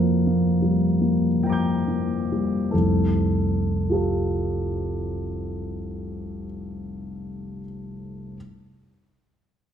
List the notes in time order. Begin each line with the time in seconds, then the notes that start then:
Already playing: F2 F3 A#3 A#4
0.27 A#3
0.62 G3
1.01 A#3
1.43 F3 G5 A#5
1.49 D6 G6
1.88 A#3
2.32 G3
2.71 F1 C2 A4
3.90 F4 G4 A4